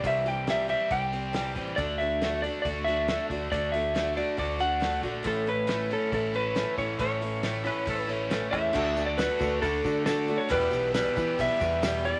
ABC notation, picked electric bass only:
X:1
M:4/4
L:1/16
Q:1/4=137
K:D
V:1 name="Picked electric bass" clef=bass
=C,,8 C,,6 A,,,2 | D,,8 D,,6 D,,2 | D,,8 D,,6 _B,,,2 | A,,,8 A,,,6 A,,,2 |
A,,,8 A,,,6 E,,2 | D,,6 D,,2 D,,2 D,6 | E,,2 B,,,4 E,2 B,,, z E,,6 |]